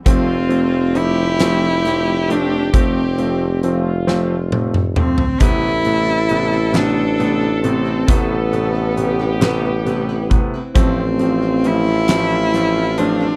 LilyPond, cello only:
\new Staff \with { instrumentName = "Cello" } { \time 6/8 \key f \lydian \tempo 4. = 45 c'4 e'4. d'8 | c'4 r4. c'8 | e'4. d'4 c'8 | b2~ b8 r8 |
c'4 e'4. d'8 | }